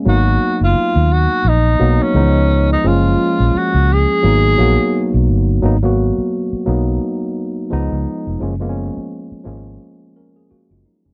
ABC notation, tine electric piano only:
X:1
M:4/4
L:1/16
Q:"Swing 16ths" 1/4=86
K:G#dor
V:1 name="Tine electric piano"
[F,A,B,D]4- [F,A,B,D] z4 z [F,A,B,D]2 [=E,^E,G,B,D]3 z | [E,G,A,C]4- [E,G,A,C] z3 [F,A,B,D]2 [F,A,B,F]4 z2 | [F,A,B,D] [F,A,B,F]3 z2 [F,A,B,D]4- [F,A,B,D] z [E,G,B,D]3 z | [E,G,A,C] [E,G,A,B,C]3 z2 [E,G,A,C]4 [CA] G [A,F] [G,E] [F,D] [E,C] |]